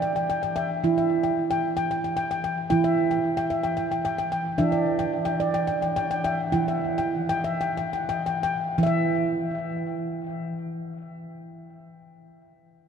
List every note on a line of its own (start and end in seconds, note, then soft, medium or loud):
0.00 0.79 E3 medium
0.00 0.15 D5 medium
0.00 0.15 G5 medium
0.16 0.28 G5 medium
0.30 0.42 G5 medium
0.43 0.55 G5 medium
0.56 0.96 E5 medium
0.56 0.83 G5 medium
0.84 2.67 E3 medium
0.84 1.10 E4 medium
0.98 1.37 E5 medium
1.23 1.25 G5 medium
1.51 1.75 G5 medium
1.77 1.90 G5 medium
1.91 2.03 G5 medium
2.04 2.15 G5 medium
2.17 2.30 G5 medium
2.31 2.43 G5 medium
2.44 2.46 G5 medium
2.70 4.55 E3 medium
2.70 2.97 E4 medium
2.70 3.10 G5 medium
2.84 3.24 E5 medium
3.11 3.13 G5 medium
3.37 3.62 G5 medium
3.50 3.91 E5 medium
3.63 3.76 G5 medium
3.77 3.90 G5 medium
3.92 4.04 G5 medium
4.05 4.17 G5 medium
4.18 4.31 G5 medium
4.32 4.34 G5 medium
4.58 6.50 E3 medium
4.58 4.85 D4 medium
4.58 4.99 E5 medium
4.72 5.13 D5 medium
4.99 5.01 G5 medium
5.25 5.53 G5 medium
5.40 5.81 D5 medium
5.54 5.66 G5 medium
5.67 5.81 G5 medium
5.82 5.95 G5 medium
5.96 6.10 G5 medium
6.11 6.23 G5 medium
6.24 6.67 E5 medium
6.24 6.51 G5 medium
6.52 8.74 E3 medium
6.52 6.82 E4 medium
6.52 6.97 G5 medium
6.68 7.13 E5 medium
6.98 7.00 G5 medium
7.29 7.60 G5 medium
7.44 7.92 E5 medium
7.61 7.76 G5 medium
7.77 7.92 G5 medium
7.93 8.08 G5 medium
8.09 8.25 G5 medium
8.26 8.42 G5 medium
8.43 8.45 G5 medium
8.78 12.12 E3 medium
8.78 12.17 E4 medium
8.83 8.86 E5 medium
8.83 12.25 E5 medium